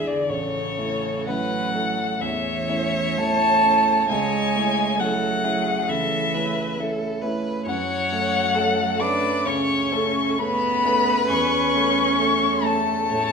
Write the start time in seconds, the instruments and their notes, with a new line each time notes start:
Already playing: grand piano E2 G#3 D4 E4, violin G#4
0.07 cello D3, violin D5
0.29 grand piano A1, cello C#3, violin A4 C#5
0.78 grand piano A3 C#4 E4
1.27 cello F#3, grand piano A3 C#4 E4, violin B4 F#5
1.74 grand piano A3 C#4 E4, violin A4
2.21 grand piano E2, cello E3, violin C#5 E5
2.69 grand piano A3 C#4 E4
3.18 grand piano A3 C#4 E4, cello A3, violin A5
3.64 grand piano A3 C#4 E4
4.09 grand piano C#2, cello G#3, violin C#5 G#5
4.56 grand piano A3 C#4 E4
4.99 cello F#3, grand piano A3 C#4 E4, violin A4 F#5
5.44 grand piano A3 C#4 E4, violin G#4
5.88 grand piano C#2, cello E3, violin A4 E5
6.34 grand piano A3 C#4 E4, violin B4
6.78 grand piano A3 C#4 E4, violin A4
7.21 grand piano A3 C#4 E4, violin B4
7.66 grand piano F#2, cello F#3, violin C#5 F#5
8.12 grand piano A3 C#4 A4
8.55 grand piano A3 C#4 A4, violin A4
9.00 grand piano A3 C#4 A4, cello D4, violin B4 D6
9.46 grand piano C#2, cello C#4, violin C#5 C#6
9.92 grand piano A3 C#4 A4, violin A4
10.38 grand piano A3 C#4 A4, cello B3, violin B4 B5
10.85 grand piano A3 C#4 A4
11.28 grand piano E2, cello C#4, violin C#6
11.75 grand piano A3 C#4 A4
12.19 grand piano A3 C#4 A4, violin A4
12.63 cello A3, grand piano A3 C#4 A4, violin A5
13.10 grand piano A2, violin C#5